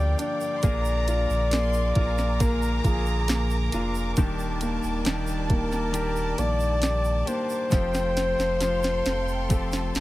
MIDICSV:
0, 0, Header, 1, 8, 480
1, 0, Start_track
1, 0, Key_signature, -2, "major"
1, 0, Tempo, 887574
1, 344, Time_signature, 4, 2, 24, 8
1, 5409, End_track
2, 0, Start_track
2, 0, Title_t, "Violin section"
2, 0, Program_c, 0, 48
2, 0, Note_on_c, 0, 79, 106
2, 300, Note_on_c, 0, 84, 81
2, 302, Note_off_c, 0, 79, 0
2, 340, Note_on_c, 0, 82, 112
2, 341, Note_off_c, 0, 84, 0
2, 821, Note_on_c, 0, 84, 109
2, 822, Note_off_c, 0, 82, 0
2, 1044, Note_off_c, 0, 84, 0
2, 1055, Note_on_c, 0, 82, 123
2, 2233, Note_off_c, 0, 82, 0
2, 2258, Note_on_c, 0, 81, 118
2, 4169, Note_on_c, 0, 79, 100
2, 4174, Note_off_c, 0, 81, 0
2, 4652, Note_on_c, 0, 77, 84
2, 4654, Note_off_c, 0, 79, 0
2, 4879, Note_off_c, 0, 77, 0
2, 4894, Note_on_c, 0, 79, 85
2, 5121, Note_off_c, 0, 79, 0
2, 5142, Note_on_c, 0, 81, 89
2, 5384, Note_off_c, 0, 81, 0
2, 5384, Note_on_c, 0, 79, 90
2, 5409, Note_off_c, 0, 79, 0
2, 5409, End_track
3, 0, Start_track
3, 0, Title_t, "String section"
3, 0, Program_c, 1, 48
3, 0, Note_on_c, 1, 70, 83
3, 0, Note_on_c, 1, 77, 70
3, 0, Note_on_c, 1, 79, 72
3, 0, Note_on_c, 1, 86, 91
3, 325, Note_off_c, 1, 79, 0
3, 346, Note_on_c, 1, 80, 76
3, 2236, Note_off_c, 1, 77, 0
3, 2240, Note_off_c, 1, 80, 0
3, 2258, Note_on_c, 1, 79, 77
3, 2259, Note_on_c, 1, 74, 81
3, 4153, Note_off_c, 1, 70, 0
3, 4153, Note_off_c, 1, 86, 0
3, 4155, Note_off_c, 1, 74, 0
3, 4155, Note_off_c, 1, 79, 0
3, 4175, Note_on_c, 1, 77, 77
3, 4175, Note_on_c, 1, 84, 96
3, 4176, Note_on_c, 1, 79, 76
3, 4179, Note_on_c, 1, 69, 85
3, 5409, Note_off_c, 1, 69, 0
3, 5409, Note_off_c, 1, 77, 0
3, 5409, Note_off_c, 1, 79, 0
3, 5409, Note_off_c, 1, 84, 0
3, 5409, End_track
4, 0, Start_track
4, 0, Title_t, "Flugelhorn"
4, 0, Program_c, 2, 56
4, 0, Note_on_c, 2, 74, 114
4, 107, Note_off_c, 2, 74, 0
4, 112, Note_on_c, 2, 74, 127
4, 1307, Note_on_c, 2, 70, 108
4, 1315, Note_off_c, 2, 74, 0
4, 1550, Note_on_c, 2, 68, 94
4, 1558, Note_off_c, 2, 70, 0
4, 2025, Note_off_c, 2, 68, 0
4, 2976, Note_on_c, 2, 70, 118
4, 3457, Note_on_c, 2, 74, 127
4, 3465, Note_off_c, 2, 70, 0
4, 3935, Note_on_c, 2, 72, 127
4, 3943, Note_off_c, 2, 74, 0
4, 5409, Note_off_c, 2, 72, 0
4, 5409, End_track
5, 0, Start_track
5, 0, Title_t, "Clean electric guitar"
5, 0, Program_c, 3, 27
5, 0, Note_on_c, 3, 43, 76
5, 0, Note_on_c, 3, 50, 78
5, 0, Note_on_c, 3, 53, 86
5, 0, Note_on_c, 3, 58, 85
5, 0, Note_on_c, 3, 62, 85
5, 0, Note_on_c, 3, 67, 90
5, 337, Note_off_c, 3, 43, 0
5, 339, Note_on_c, 3, 46, 79
5, 340, Note_off_c, 3, 50, 0
5, 342, Note_off_c, 3, 53, 0
5, 342, Note_on_c, 3, 50, 80
5, 344, Note_off_c, 3, 58, 0
5, 344, Note_on_c, 3, 53, 91
5, 346, Note_off_c, 3, 62, 0
5, 347, Note_off_c, 3, 67, 0
5, 347, Note_on_c, 3, 58, 90
5, 348, Note_on_c, 3, 62, 92
5, 349, Note_on_c, 3, 68, 100
5, 808, Note_off_c, 3, 53, 0
5, 815, Note_on_c, 3, 53, 71
5, 819, Note_off_c, 3, 58, 0
5, 821, Note_on_c, 3, 58, 70
5, 822, Note_off_c, 3, 46, 0
5, 824, Note_off_c, 3, 62, 0
5, 826, Note_on_c, 3, 62, 77
5, 827, Note_off_c, 3, 68, 0
5, 832, Note_on_c, 3, 68, 77
5, 849, Note_off_c, 3, 50, 0
5, 1294, Note_off_c, 3, 53, 0
5, 1295, Note_on_c, 3, 46, 78
5, 1298, Note_on_c, 3, 50, 83
5, 1300, Note_off_c, 3, 58, 0
5, 1300, Note_off_c, 3, 68, 0
5, 1301, Note_on_c, 3, 53, 86
5, 1302, Note_off_c, 3, 62, 0
5, 1302, Note_on_c, 3, 58, 89
5, 1304, Note_on_c, 3, 62, 92
5, 1306, Note_on_c, 3, 68, 87
5, 2008, Note_off_c, 3, 68, 0
5, 2015, Note_on_c, 3, 68, 57
5, 2017, Note_off_c, 3, 46, 0
5, 2019, Note_off_c, 3, 62, 0
5, 2020, Note_off_c, 3, 53, 0
5, 2022, Note_on_c, 3, 62, 57
5, 2025, Note_off_c, 3, 58, 0
5, 2027, Note_on_c, 3, 58, 50
5, 2031, Note_off_c, 3, 50, 0
5, 2033, Note_on_c, 3, 53, 47
5, 2256, Note_off_c, 3, 53, 0
5, 2256, Note_off_c, 3, 58, 0
5, 2256, Note_off_c, 3, 68, 0
5, 2256, Note_on_c, 3, 51, 91
5, 2258, Note_on_c, 3, 55, 107
5, 2259, Note_off_c, 3, 62, 0
5, 2263, Note_on_c, 3, 58, 106
5, 2266, Note_on_c, 3, 62, 98
5, 2268, Note_on_c, 3, 67, 110
5, 2727, Note_off_c, 3, 55, 0
5, 2729, Note_on_c, 3, 55, 75
5, 2730, Note_off_c, 3, 58, 0
5, 2734, Note_off_c, 3, 51, 0
5, 2735, Note_off_c, 3, 62, 0
5, 2736, Note_on_c, 3, 58, 75
5, 2741, Note_on_c, 3, 62, 79
5, 2742, Note_off_c, 3, 67, 0
5, 2745, Note_on_c, 3, 67, 82
5, 3203, Note_off_c, 3, 58, 0
5, 3204, Note_on_c, 3, 51, 82
5, 3205, Note_off_c, 3, 55, 0
5, 3205, Note_off_c, 3, 62, 0
5, 3207, Note_on_c, 3, 55, 91
5, 3210, Note_on_c, 3, 58, 93
5, 3212, Note_on_c, 3, 62, 97
5, 3213, Note_off_c, 3, 67, 0
5, 3215, Note_on_c, 3, 67, 99
5, 3922, Note_off_c, 3, 67, 0
5, 3924, Note_on_c, 3, 67, 56
5, 3927, Note_off_c, 3, 62, 0
5, 3929, Note_off_c, 3, 51, 0
5, 3932, Note_off_c, 3, 58, 0
5, 3933, Note_on_c, 3, 62, 47
5, 3940, Note_on_c, 3, 58, 46
5, 4163, Note_on_c, 3, 53, 87
5, 4169, Note_off_c, 3, 55, 0
5, 4170, Note_off_c, 3, 67, 0
5, 4171, Note_on_c, 3, 57, 88
5, 4174, Note_off_c, 3, 62, 0
5, 4175, Note_off_c, 3, 58, 0
5, 4177, Note_on_c, 3, 60, 92
5, 4182, Note_on_c, 3, 65, 85
5, 4188, Note_on_c, 3, 67, 90
5, 5131, Note_off_c, 3, 57, 0
5, 5132, Note_off_c, 3, 53, 0
5, 5133, Note_off_c, 3, 60, 0
5, 5134, Note_on_c, 3, 53, 90
5, 5138, Note_on_c, 3, 57, 85
5, 5139, Note_on_c, 3, 60, 97
5, 5140, Note_off_c, 3, 65, 0
5, 5143, Note_off_c, 3, 67, 0
5, 5143, Note_on_c, 3, 65, 94
5, 5145, Note_on_c, 3, 67, 92
5, 5409, Note_off_c, 3, 53, 0
5, 5409, Note_off_c, 3, 57, 0
5, 5409, Note_off_c, 3, 60, 0
5, 5409, Note_off_c, 3, 65, 0
5, 5409, Note_off_c, 3, 67, 0
5, 5409, End_track
6, 0, Start_track
6, 0, Title_t, "Grand piano"
6, 0, Program_c, 4, 0
6, 0, Control_c, 4, 64, 127
6, 0, Note_on_c, 4, 55, 62
6, 0, Note_on_c, 4, 62, 53
6, 90, Note_off_c, 4, 62, 0
6, 99, Note_on_c, 4, 62, 54
6, 328, Note_off_c, 4, 55, 0
6, 335, Note_off_c, 4, 62, 0
6, 341, Note_on_c, 4, 58, 73
6, 351, Control_c, 4, 64, 0
6, 429, Control_c, 4, 64, 127
6, 585, Note_on_c, 4, 65, 59
6, 816, Note_off_c, 4, 58, 0
6, 824, Note_on_c, 4, 58, 65
6, 1053, Note_off_c, 4, 65, 0
6, 1062, Note_on_c, 4, 65, 64
6, 1289, Note_off_c, 4, 58, 0
6, 1297, Note_on_c, 4, 58, 64
6, 1533, Note_off_c, 4, 65, 0
6, 1541, Note_on_c, 4, 65, 57
6, 1767, Note_off_c, 4, 58, 0
6, 1776, Note_on_c, 4, 58, 66
6, 2014, Note_off_c, 4, 65, 0
6, 2022, Note_on_c, 4, 65, 59
6, 2242, Note_off_c, 4, 58, 0
6, 2252, Note_off_c, 4, 65, 0
6, 2260, Note_on_c, 4, 51, 81
6, 2266, Control_c, 4, 64, 0
6, 2372, Control_c, 4, 64, 127
6, 2500, Note_on_c, 4, 58, 63
6, 2728, Note_off_c, 4, 51, 0
6, 2736, Note_on_c, 4, 51, 69
6, 2969, Note_off_c, 4, 58, 0
6, 2978, Note_on_c, 4, 58, 65
6, 3211, Note_on_c, 4, 67, 67
6, 3444, Note_off_c, 4, 58, 0
6, 3452, Note_on_c, 4, 58, 63
6, 3671, Note_off_c, 4, 51, 0
6, 3685, Note_off_c, 4, 67, 0
6, 3693, Note_on_c, 4, 67, 62
6, 3923, Note_off_c, 4, 58, 0
6, 3931, Note_on_c, 4, 58, 56
6, 4160, Note_off_c, 4, 67, 0
6, 4166, Note_off_c, 4, 58, 0
6, 4175, Note_on_c, 4, 53, 74
6, 4180, Control_c, 4, 64, 0
6, 4265, Control_c, 4, 64, 127
6, 4413, Note_on_c, 4, 60, 59
6, 4646, Note_off_c, 4, 53, 0
6, 4655, Note_on_c, 4, 53, 61
6, 4892, Note_off_c, 4, 60, 0
6, 4900, Note_on_c, 4, 60, 56
6, 5139, Note_on_c, 4, 69, 61
6, 5380, Note_off_c, 4, 60, 0
6, 5388, Note_on_c, 4, 60, 53
6, 5409, Note_off_c, 4, 53, 0
6, 5409, Note_off_c, 4, 60, 0
6, 5409, Note_off_c, 4, 69, 0
6, 5409, End_track
7, 0, Start_track
7, 0, Title_t, "Sub bass"
7, 0, Program_c, 5, 38
7, 0, Note_on_c, 5, 38, 99
7, 80, Note_off_c, 5, 38, 0
7, 342, Note_on_c, 5, 34, 117
7, 682, Note_off_c, 5, 34, 0
7, 703, Note_on_c, 5, 34, 108
7, 1040, Note_off_c, 5, 34, 0
7, 1060, Note_on_c, 5, 34, 92
7, 1518, Note_off_c, 5, 34, 0
7, 1539, Note_on_c, 5, 34, 93
7, 1998, Note_off_c, 5, 34, 0
7, 2020, Note_on_c, 5, 29, 87
7, 2242, Note_off_c, 5, 29, 0
7, 2259, Note_on_c, 5, 27, 102
7, 2594, Note_off_c, 5, 27, 0
7, 2616, Note_on_c, 5, 27, 97
7, 2727, Note_off_c, 5, 27, 0
7, 2734, Note_on_c, 5, 27, 124
7, 3430, Note_off_c, 5, 27, 0
7, 3451, Note_on_c, 5, 34, 92
7, 3911, Note_off_c, 5, 34, 0
7, 4176, Note_on_c, 5, 29, 113
7, 4515, Note_off_c, 5, 29, 0
7, 4534, Note_on_c, 5, 29, 98
7, 4875, Note_off_c, 5, 29, 0
7, 4899, Note_on_c, 5, 29, 105
7, 5362, Note_off_c, 5, 29, 0
7, 5382, Note_on_c, 5, 29, 98
7, 5409, Note_off_c, 5, 29, 0
7, 5409, End_track
8, 0, Start_track
8, 0, Title_t, "Drums"
8, 102, Note_on_c, 9, 82, 48
8, 103, Note_on_c, 9, 42, 83
8, 156, Note_off_c, 9, 82, 0
8, 157, Note_off_c, 9, 42, 0
8, 219, Note_on_c, 9, 82, 55
8, 273, Note_off_c, 9, 82, 0
8, 338, Note_on_c, 9, 82, 78
8, 339, Note_on_c, 9, 42, 89
8, 342, Note_on_c, 9, 36, 117
8, 393, Note_off_c, 9, 82, 0
8, 394, Note_off_c, 9, 42, 0
8, 396, Note_off_c, 9, 36, 0
8, 460, Note_on_c, 9, 82, 63
8, 514, Note_off_c, 9, 82, 0
8, 583, Note_on_c, 9, 42, 81
8, 583, Note_on_c, 9, 82, 55
8, 637, Note_off_c, 9, 42, 0
8, 637, Note_off_c, 9, 82, 0
8, 704, Note_on_c, 9, 82, 48
8, 758, Note_off_c, 9, 82, 0
8, 819, Note_on_c, 9, 42, 97
8, 827, Note_on_c, 9, 38, 106
8, 828, Note_on_c, 9, 82, 67
8, 873, Note_off_c, 9, 42, 0
8, 881, Note_off_c, 9, 38, 0
8, 882, Note_off_c, 9, 82, 0
8, 938, Note_on_c, 9, 82, 57
8, 992, Note_off_c, 9, 82, 0
8, 1057, Note_on_c, 9, 42, 63
8, 1060, Note_on_c, 9, 36, 94
8, 1111, Note_off_c, 9, 42, 0
8, 1114, Note_off_c, 9, 36, 0
8, 1178, Note_on_c, 9, 82, 47
8, 1182, Note_on_c, 9, 38, 33
8, 1233, Note_off_c, 9, 82, 0
8, 1236, Note_off_c, 9, 38, 0
8, 1299, Note_on_c, 9, 42, 102
8, 1300, Note_on_c, 9, 36, 104
8, 1301, Note_on_c, 9, 82, 87
8, 1353, Note_off_c, 9, 42, 0
8, 1354, Note_off_c, 9, 36, 0
8, 1355, Note_off_c, 9, 82, 0
8, 1418, Note_on_c, 9, 82, 57
8, 1472, Note_off_c, 9, 82, 0
8, 1538, Note_on_c, 9, 36, 95
8, 1538, Note_on_c, 9, 82, 55
8, 1539, Note_on_c, 9, 42, 67
8, 1592, Note_off_c, 9, 36, 0
8, 1592, Note_off_c, 9, 82, 0
8, 1593, Note_off_c, 9, 42, 0
8, 1655, Note_on_c, 9, 82, 49
8, 1709, Note_off_c, 9, 82, 0
8, 1774, Note_on_c, 9, 42, 96
8, 1780, Note_on_c, 9, 82, 75
8, 1782, Note_on_c, 9, 38, 113
8, 1829, Note_off_c, 9, 42, 0
8, 1834, Note_off_c, 9, 82, 0
8, 1836, Note_off_c, 9, 38, 0
8, 1894, Note_on_c, 9, 82, 51
8, 1948, Note_off_c, 9, 82, 0
8, 2014, Note_on_c, 9, 42, 84
8, 2015, Note_on_c, 9, 82, 54
8, 2068, Note_off_c, 9, 42, 0
8, 2069, Note_off_c, 9, 82, 0
8, 2134, Note_on_c, 9, 82, 55
8, 2188, Note_off_c, 9, 82, 0
8, 2252, Note_on_c, 9, 82, 84
8, 2254, Note_on_c, 9, 42, 86
8, 2257, Note_on_c, 9, 36, 114
8, 2306, Note_off_c, 9, 82, 0
8, 2308, Note_off_c, 9, 42, 0
8, 2312, Note_off_c, 9, 36, 0
8, 2375, Note_on_c, 9, 82, 61
8, 2429, Note_off_c, 9, 82, 0
8, 2492, Note_on_c, 9, 42, 80
8, 2495, Note_on_c, 9, 82, 54
8, 2546, Note_off_c, 9, 42, 0
8, 2549, Note_off_c, 9, 82, 0
8, 2613, Note_on_c, 9, 82, 48
8, 2667, Note_off_c, 9, 82, 0
8, 2731, Note_on_c, 9, 42, 94
8, 2735, Note_on_c, 9, 82, 75
8, 2739, Note_on_c, 9, 38, 111
8, 2785, Note_off_c, 9, 42, 0
8, 2790, Note_off_c, 9, 82, 0
8, 2793, Note_off_c, 9, 38, 0
8, 2849, Note_on_c, 9, 82, 61
8, 2904, Note_off_c, 9, 82, 0
8, 2973, Note_on_c, 9, 42, 67
8, 2974, Note_on_c, 9, 36, 87
8, 3027, Note_off_c, 9, 42, 0
8, 3028, Note_off_c, 9, 36, 0
8, 3092, Note_on_c, 9, 82, 44
8, 3096, Note_on_c, 9, 38, 33
8, 3146, Note_off_c, 9, 82, 0
8, 3150, Note_off_c, 9, 38, 0
8, 3212, Note_on_c, 9, 42, 104
8, 3214, Note_on_c, 9, 82, 85
8, 3266, Note_off_c, 9, 42, 0
8, 3268, Note_off_c, 9, 82, 0
8, 3331, Note_on_c, 9, 82, 57
8, 3385, Note_off_c, 9, 82, 0
8, 3451, Note_on_c, 9, 42, 72
8, 3453, Note_on_c, 9, 82, 56
8, 3505, Note_off_c, 9, 42, 0
8, 3507, Note_off_c, 9, 82, 0
8, 3568, Note_on_c, 9, 82, 48
8, 3622, Note_off_c, 9, 82, 0
8, 3686, Note_on_c, 9, 42, 91
8, 3694, Note_on_c, 9, 38, 116
8, 3694, Note_on_c, 9, 82, 74
8, 3741, Note_off_c, 9, 42, 0
8, 3748, Note_off_c, 9, 38, 0
8, 3748, Note_off_c, 9, 82, 0
8, 3810, Note_on_c, 9, 82, 53
8, 3864, Note_off_c, 9, 82, 0
8, 3934, Note_on_c, 9, 42, 81
8, 3935, Note_on_c, 9, 82, 51
8, 3988, Note_off_c, 9, 42, 0
8, 3989, Note_off_c, 9, 82, 0
8, 4053, Note_on_c, 9, 82, 55
8, 4107, Note_off_c, 9, 82, 0
8, 4170, Note_on_c, 9, 82, 80
8, 4175, Note_on_c, 9, 36, 114
8, 4175, Note_on_c, 9, 42, 90
8, 4179, Note_on_c, 9, 38, 63
8, 4224, Note_off_c, 9, 82, 0
8, 4229, Note_off_c, 9, 36, 0
8, 4229, Note_off_c, 9, 42, 0
8, 4233, Note_off_c, 9, 38, 0
8, 4294, Note_on_c, 9, 82, 60
8, 4297, Note_on_c, 9, 38, 56
8, 4348, Note_off_c, 9, 82, 0
8, 4351, Note_off_c, 9, 38, 0
8, 4417, Note_on_c, 9, 42, 75
8, 4418, Note_on_c, 9, 82, 59
8, 4419, Note_on_c, 9, 38, 74
8, 4471, Note_off_c, 9, 42, 0
8, 4472, Note_off_c, 9, 82, 0
8, 4474, Note_off_c, 9, 38, 0
8, 4540, Note_on_c, 9, 82, 49
8, 4542, Note_on_c, 9, 38, 65
8, 4594, Note_off_c, 9, 82, 0
8, 4596, Note_off_c, 9, 38, 0
8, 4654, Note_on_c, 9, 42, 98
8, 4658, Note_on_c, 9, 82, 70
8, 4660, Note_on_c, 9, 38, 69
8, 4708, Note_off_c, 9, 42, 0
8, 4713, Note_off_c, 9, 82, 0
8, 4714, Note_off_c, 9, 38, 0
8, 4774, Note_on_c, 9, 82, 56
8, 4783, Note_on_c, 9, 38, 70
8, 4828, Note_off_c, 9, 82, 0
8, 4837, Note_off_c, 9, 38, 0
8, 4898, Note_on_c, 9, 42, 66
8, 4898, Note_on_c, 9, 82, 53
8, 4902, Note_on_c, 9, 38, 83
8, 4952, Note_off_c, 9, 42, 0
8, 4952, Note_off_c, 9, 82, 0
8, 4956, Note_off_c, 9, 38, 0
8, 5020, Note_on_c, 9, 82, 45
8, 5074, Note_off_c, 9, 82, 0
8, 5138, Note_on_c, 9, 42, 102
8, 5138, Note_on_c, 9, 82, 87
8, 5140, Note_on_c, 9, 36, 101
8, 5192, Note_off_c, 9, 42, 0
8, 5192, Note_off_c, 9, 82, 0
8, 5194, Note_off_c, 9, 36, 0
8, 5257, Note_on_c, 9, 82, 57
8, 5263, Note_on_c, 9, 38, 81
8, 5311, Note_off_c, 9, 82, 0
8, 5317, Note_off_c, 9, 38, 0
8, 5380, Note_on_c, 9, 82, 56
8, 5381, Note_on_c, 9, 42, 68
8, 5386, Note_on_c, 9, 38, 98
8, 5409, Note_off_c, 9, 38, 0
8, 5409, Note_off_c, 9, 42, 0
8, 5409, Note_off_c, 9, 82, 0
8, 5409, End_track
0, 0, End_of_file